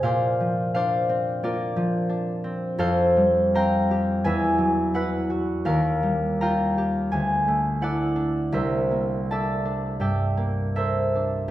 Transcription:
<<
  \new Staff \with { instrumentName = "Harp" } { \time 4/4 \key bes \lydian \tempo 4 = 85 <bes' c'' d'' f'' bes''>4 <c'' d'' f''>4 <f' bes' d''>2 | \key c \mixolydian <a' c'' f''>4 <f'' g'' bes''>4 <b' e'' gis''>4 <b' fis''>4 | <bes' f''>4 <f'' g'' bes''>4 aes''4 <a' d'' fis''>4 | <bes' c'' e''>4 <d'' e'' a''>4 <d'' e'' g''>4 <bes' c'' e''>4 | }
  \new Staff \with { instrumentName = "Harp" } { \time 4/4 \key bes \lydian bes,8 f8 d'8 c'8 bes8 f8 d'8 c'8 | \key c \mixolydian f,8 g8 c'8 g'8 e,8 fis8 e'8 fis'8 | ees,8 g8 f'8 g'8 d,8 a8 e'8 d'8 | c,8 bes8 a'8 d'8 g,8 bes8 a'8 d'8 | }
>>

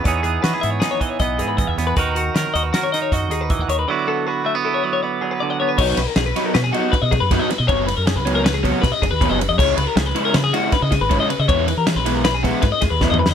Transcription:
<<
  \new Staff \with { instrumentName = "Clean electric guitar" } { \time 5/4 \key e \lydian \tempo 4 = 158 cis''8 gis'8 b'8 e''16 cis''16 gis'16 cis''16 dis''16 cis''16 dis''8 gis'16 b'16 dis''16 e''16 cis''16 b'16 | b'8 fis'8 ais'8 dis''16 b'16 fis'16 cis''16 dis''16 cis''16 dis''8 gis'16 b'16 dis''16 fis''16 cis''16 b'16 | d''8 a'8 b'8 e''16 d''16 a'16 cis''16 d''16 cis''16 d''8 gis'16 b'16 d''16 fis''16 cis''16 b'16 | cis''8 b'16 ais'16 gis'16 b'8 ais'16 b'16 gis'16 fis'8 b'16 dis''16 gis'16 b'8 dis''16 b'16 dis''16 |
cis''8 b'16 ais'16 gis'16 b'8 ais'16 b'16 gis'16 fis'8 b'16 dis''16 gis'16 b'8 dis''16 b'16 dis''16 | cis''8 b'16 ais'16 gis'16 b'8 ais'16 b'16 gis'16 fis'8 b'16 dis''16 gis'16 b'8 dis''16 b'16 dis''16 | cis''8 b'16 ais'16 gis'16 b'8 ais'16 b'16 gis'16 fis'8 b'16 dis''16 gis'16 b'8 dis''16 b'16 dis''16 | }
  \new Staff \with { instrumentName = "Clean electric guitar" } { \time 5/4 \key e \lydian << { <e b dis' gis'>8 b8 fis'16 gis'16 b8 dis'4 b4. b8 | <dis' fis' ais'>8 fis'8 ais'8 fis'8 ais'4 fis'2 | <fis b e' fis'>8 b8 fis'8 a16 b16 e'4 b4. b8 | r1 r4 |
r1 r4 | r1 r4 | r1 r4 | } \\ { e,2~ e,8 e4 e8 e,4 | dis2~ dis8 dis'4 dis'8 e8 dis8 | d2~ d8 fis4 fis8 d4 | r1 r4 |
r1 r4 | r1 r4 | r1 r4 | } >> }
  \new Staff \with { instrumentName = "Overdriven electric guitar" } { \time 5/4 \key e \lydian r1 r4 | r1 r4 | r1 r4 | <fis b dis' fis'>8 r4 <fis b dis' fis'>8 r8 <fis b dis' fis'>8 r4 <fis b dis' fis'>8 r8 |
<cis fis b cis'>8 r4 <cis fis b cis'>8 r8 <cis fis b cis'>8 r4 <cis fis b cis'>8 r8 | <cis gis cis' e'>8 r4 <cis gis cis' e'>8 r8 <cis gis cis' e'>8 r4 <cis gis cis' e'>8 r8 | <e gis b e'>8 r4 <e gis b e'>8 r8 <e gis b e'>8 r4 <e gis b e'>8 r8 | }
  \new Staff \with { instrumentName = "Fingered electric bass" } { \clef bass \time 5/4 \key e \lydian e,4 e16 r16 gis,8 r4 b,,8 gis,8. e,16 e,8 | dis,4 dis16 r16 dis,8 r4 fis,8 dis,8. dis,16 dis,8 | r1 r4 | b,,8 b,,16 r16 b,,8 r8 b,8 r8. b,8 fis,8 r8 b,16 |
fis,,8. fis,8 cis,4.~ cis,16 b,,16 r16 fis,,16 dis,8 fis,,8 fis,16 | cis,8 cis,16 r16 cis,8 r8 cis8 r8. cis8 gis,,8 r8 cis16 | e,8. e8 b,,4.~ b,,16 gis,16 r16 e,16 dis,8 e,8 e16 | }
  \new DrumStaff \with { instrumentName = "Drums" } \drummode { \time 5/4 <hh bd>8 hh8 <hh sn>8 hh8 <hh sn>8 <hh bd>8 <hh bd>8 hh8 <hh bd>8 <hh sn>8 | <hh bd>8 hh8 <hh sn>8 hh8 <hh sn>8 <hh sn>8 <hh bd sn>8 hh8 <hh bd>8 hh8 | r4 r4 r4 r4 r4 | <cymc bd>8 <cymr sn>8 <cymr sn>8 <cymr sn>8 <cymr sn>8 cymr8 <bd cymr>8 <bd cymr>8 <bd cymr sn>8 <cymr sn>8 |
<bd cymr>8 cymr8 <cymr sn>8 cymr8 <cymr sn>8 <bd cymr>8 <bd cymr sn>8 <bd cymr>8 <bd cymr>8 cymr8 | <cymc bd>8 cymr8 <cymr sn>8 cymr8 <cymr sn>8 cymr8 <bd cymr sn>8 <bd cymr sn>8 <bd cymr>8 cymr8 | <bd cymr>8 cymr8 <cymr sn>8 cymr8 <cymr sn>8 <bd cymr>8 <bd cymr sn>8 <bd cymr sn>8 \tuplet 3/2 { <bd sn>8 toml8 sn8 } | }
>>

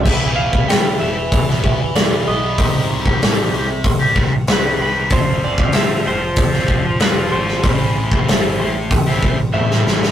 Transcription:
<<
  \new Staff \with { instrumentName = "Clean electric guitar" } { \time 4/4 \key e \phrygian \tempo 4 = 95 e''8 f''8 g''8 e''4. d''8 dis''8~ | dis''8 r2 r8 b'8 b'8 | c''8 d''8 e''8 c''4. b'8 c''8~ | c''8 r2 r8 e''4 | }
  \new Staff \with { instrumentName = "Overdriven electric guitar" } { \time 4/4 \key e \phrygian <e g b e'>8. <g b e'>16 <e g b e'>8 <e g b e'>8. <g b e'>16 <e g b e'>8 <e g b e'>16 <g b e'>16 <e g b e'>8 | <c ees g c' g'>8. <g c' g'>16 <c ees g c' g'>8 <ees g c' g'>8. <g c' g'>16 <ees g c' g'>8 <c ees g c' g'>16 <g c' g'>16 <ees g c' g'>8 | <f a c' f'>8. <a c' f'>16 <f a c' f'>8 <f a c' f'>8. <a c' f'>16 <f a c' f'>8 <f a c' f'>16 <a c' f'>16 <f a c' f'>8 | <a, e a c' e'>8. <a c' e'>16 <a, e a c' e'>8 <e a c' e'>8. <a c' e'>16 <e a c' e'>8 <a, e a c' e'>16 <a c' e'>16 <e a c' e'>8 | }
  \new Staff \with { instrumentName = "Picked electric bass" } { \clef bass \time 4/4 \key e \phrygian e,,8 e,,8 d,8 e,,8 e,,8 e,,8 e,,8 b,,8 | c,8 c,8 a,,8 c,8 c,8 c,8 c,8 c,8 | f,,8 f,,8 d,8 f,,8 f,,8 f,,8 f,,8 gis,,8 | a,,8 a,,8 g,,8 a,,8 a,,8 a,,8 a,,8 a,,8 | }
  \new DrumStaff \with { instrumentName = "Drums" } \drummode { \time 4/4 <cymc bd>8. bd16 <hho sn>4 <hho bd>16 sn16 bd8 <hho sn>4 | <hho bd>8. bd16 <hho sn>4 <hho bd>8 bd8 <hho sn>4 | <hho bd>8. bd16 <hho sn>4 <hho bd>16 sn16 bd8 <hho sn>8. sn16 | <hho bd>8. bd16 <hho sn>4 <hho bd>16 sn16 bd8 tommh16 sn16 sn16 sn16 | }
>>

